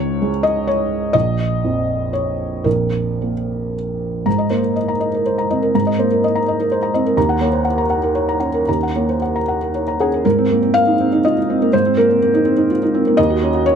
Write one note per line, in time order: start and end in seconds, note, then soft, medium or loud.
0.00 1.11 C#2 medium
0.00 0.29 G#2 soft
0.00 0.44 C#5 medium
0.22 1.15 G#3 soft
0.43 0.67 D#5 medium
0.67 1.15 C#5 medium
1.13 2.61 A#1 medium
1.13 2.12 D#5 loud
1.64 3.32 F2 soft
2.13 2.66 C#5 medium
2.64 4.23 A#1 soft
2.64 3.74 A#4 medium
3.21 4.27 A#3 soft
4.26 5.70 G#2 soft
4.26 4.46 A#5 soft
4.38 4.59 D#5 soft
4.50 4.91 A#3 soft
4.50 4.71 C5 soft
4.63 4.76 A#4 soft
4.76 4.96 D#5 soft
4.88 5.09 A#5 soft
5.00 5.21 D#5 soft
5.14 5.34 A#4 soft
5.26 5.45 C5 soft
5.38 5.58 A#5 soft
5.51 5.89 C4 soft
5.51 5.70 D#5 soft
5.62 5.82 A#4 soft
5.75 7.13 G#2 soft
5.75 5.94 A#5 medium
5.87 6.06 D#5 soft
5.99 6.37 A#3 soft
5.99 6.18 C5 soft
6.11 6.23 A#4 soft
6.24 6.43 D#5 medium
6.35 6.54 A#5 medium
6.48 6.66 D#5 soft
6.60 6.78 A#4 soft
6.72 6.89 C5 medium
6.83 7.01 A#5 medium
6.94 7.17 C4 soft
6.94 7.12 D#5 medium
7.06 7.17 A#4 soft
7.17 8.64 D#2 medium
7.17 7.36 A#5 medium
7.29 7.48 F#5 medium
7.41 7.80 A#3 soft
7.41 7.60 C#5 medium
7.53 7.65 C5 soft
7.65 7.84 F#5 medium
7.78 7.97 A#5 soft
7.90 8.10 F#5 soft
8.03 8.23 A#4 soft
8.15 8.35 C#5 soft
8.29 8.49 A#5 soft
8.40 8.83 C#4 soft
8.40 8.62 F#5 soft
8.54 8.75 A#4 soft
8.69 10.21 D#2 soft
8.69 8.89 A#5 soft
8.83 9.03 F#5 soft
8.96 9.37 A#3 soft
8.96 9.16 C#5 soft
9.09 9.21 C5 soft
9.22 9.42 F#5 soft
9.36 9.56 A#5 soft
9.48 9.68 F#5 soft
9.62 9.82 A#4 soft
9.75 9.95 C#5 soft
9.88 10.08 A#5 soft
10.00 10.26 C#4 soft
10.00 10.25 G#4 medium
10.00 10.20 F#5 soft
10.14 10.23 A#4 soft
10.25 11.69 G#2 medium
10.25 10.74 A#4 medium
10.38 10.58 C4 soft
10.51 10.70 A#3 soft
10.62 10.82 C4 soft
10.74 10.94 A#3 soft
10.74 11.24 F5 loud
10.87 11.07 D#4 soft
11.00 11.19 C4 soft
11.13 11.32 D#4 soft
11.25 11.37 F4 soft
11.25 11.73 D#5 medium
11.38 11.57 D#4 soft
11.50 11.68 C4 medium
11.62 11.81 A#3 medium
11.73 13.15 G#2 medium
11.73 11.97 C5 medium
11.86 12.05 C4 medium
11.97 12.17 A#3 medium
11.97 12.70 A#4 medium
12.09 12.29 C4 soft
12.22 12.41 A#3 soft
12.34 12.53 D#4 medium
12.45 12.65 C4 medium
12.57 12.77 D#4 medium
12.71 12.82 F4 soft
12.83 13.01 D#4 medium
12.94 13.13 C4 medium
13.07 13.18 A#3 medium
13.17 13.75 D#2 medium
13.17 13.65 D#5 loud
13.30 13.49 F#4 medium
13.43 13.62 C#4 medium
13.54 13.73 F#4 medium
13.66 13.75 C#4 medium
13.66 13.75 C#5 medium